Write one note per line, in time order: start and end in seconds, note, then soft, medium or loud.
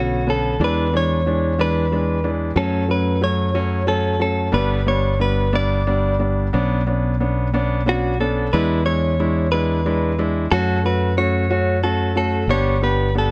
0.00 0.56 B1 medium
0.00 0.20 D3 medium
0.00 0.20 B3 medium
0.00 0.20 C#4 medium
0.00 0.30 F#4 medium
0.27 0.53 D3 medium
0.27 0.53 B3 medium
0.27 0.53 C#4 medium
0.27 0.62 A4 medium
0.60 2.53 E2 medium
0.60 0.86 E3 medium
0.60 0.86 G#3 medium
0.60 0.86 D4 loud
0.64 0.96 B4 medium
0.93 1.19 E3 medium
0.93 1.19 G#3 medium
0.93 1.19 D4 medium
0.93 1.61 C#5 medium
1.26 1.52 E3 medium
1.26 1.52 G#3 medium
1.26 1.52 D4 medium
1.58 1.84 E3 medium
1.58 1.84 G#3 medium
1.58 1.85 D4 medium
1.58 2.30 B4 loud
1.92 2.17 E3 medium
1.92 2.17 G#3 medium
1.92 2.18 D4 medium
2.24 2.50 E3 medium
2.24 2.50 G#3 medium
2.24 2.50 D4 medium
2.56 4.50 F#2 loud
2.56 2.82 F#3 medium
2.56 2.82 A3 medium
2.56 2.82 C#4 loud
2.56 2.91 A4 medium
2.88 3.15 F#3 medium
2.88 3.15 A3 medium
2.88 3.15 C#4 medium
2.88 3.23 B4 medium
3.21 3.48 F#3 medium
3.21 3.48 A3 medium
3.21 3.48 C#4 medium
3.21 3.88 C#5 medium
3.54 3.81 F#3 medium
3.54 3.81 A3 medium
3.54 3.81 C#4 loud
3.87 4.13 F#3 medium
3.87 4.13 A3 medium
3.87 4.13 C#4 medium
3.87 4.21 A4 medium
4.19 4.46 F#3 medium
4.19 4.46 A3 medium
4.19 4.46 C#4 medium
4.19 4.54 A4 medium
4.52 6.50 G1 loud
4.52 4.79 G3 medium
4.52 4.79 B3 medium
4.52 4.79 D4 loud
4.52 4.88 B4 medium
4.86 5.13 G3 medium
4.86 5.13 B3 medium
4.86 5.13 D4 medium
4.86 5.21 C#5 medium
5.19 5.46 G3 medium
5.19 5.46 B3 medium
5.19 5.46 D4 medium
5.19 5.52 B4 medium
5.53 5.80 G3 medium
5.53 5.80 B3 medium
5.53 5.80 D4 medium
5.53 6.26 D5 loud
5.87 6.13 G3 medium
5.87 6.14 B3 medium
5.87 6.13 D4 medium
6.19 6.46 G3 medium
6.19 6.46 B3 medium
6.19 6.46 D4 medium
6.53 8.49 B1 loud
6.53 6.80 B3 medium
6.53 6.80 C#4 medium
6.53 6.80 D4 loud
6.87 7.13 B3 medium
6.87 7.13 C#4 medium
6.87 7.13 D4 medium
7.20 7.47 B3 medium
7.20 7.47 C#4 medium
7.20 7.47 D4 medium
7.54 7.80 B3 medium
7.54 7.80 C#4 medium
7.54 7.80 D4 loud
7.86 8.13 B3 medium
7.86 8.13 C#4 medium
7.86 8.13 D4 medium
7.86 8.20 F#4 medium
8.20 8.46 B3 medium
8.20 8.46 C#4 medium
8.20 8.46 D4 medium
8.20 8.55 A4 medium
8.53 10.47 E2 loud
8.53 8.79 G#3 medium
8.53 8.79 D4 medium
8.53 8.80 E4 loud
8.53 8.84 B4 loud
8.86 9.12 G#3 medium
8.86 9.12 D4 medium
8.86 9.13 E4 medium
8.86 9.51 C#5 loud
9.19 9.45 G#3 medium
9.19 9.45 D4 medium
9.19 9.46 E4 medium
9.52 9.78 G#3 medium
9.52 9.78 D4 medium
9.52 9.79 E4 medium
9.52 10.22 B4 loud
9.86 10.11 G#3 medium
9.86 10.11 D4 medium
9.86 10.12 E4 medium
10.19 10.44 G#3 medium
10.19 10.44 D4 medium
10.19 10.44 E4 medium
10.51 12.45 F#2 loud
10.51 10.77 A3 medium
10.51 10.77 C#4 medium
10.51 10.78 F#4 loud
10.51 10.85 A4 medium
10.84 11.10 A3 medium
10.84 11.10 C#4 medium
10.84 11.11 F#4 medium
10.84 11.16 B4 medium
11.18 11.43 A3 medium
11.18 11.43 C#4 medium
11.18 11.43 F#4 medium
11.18 11.83 C#5 medium
11.49 11.76 A3 medium
11.49 11.76 C#4 medium
11.49 11.76 F#4 medium
11.83 12.09 A3 medium
11.83 12.09 C#4 medium
11.83 12.09 F#4 medium
11.83 12.16 A4 medium
12.15 12.41 A3 medium
12.15 12.42 C#4 medium
12.15 12.42 F#4 medium
12.15 12.50 A4 medium
12.48 13.31 G1 loud
12.48 12.75 B3 medium
12.48 12.75 D4 medium
12.48 12.75 G4 medium
12.48 12.83 C#5 loud
12.82 13.08 B3 medium
12.82 13.08 D4 medium
12.82 13.08 G4 medium
12.82 13.14 B4 medium
13.15 13.31 B3 medium
13.15 13.31 D4 medium
13.15 13.31 G4 medium
13.15 13.31 A4 medium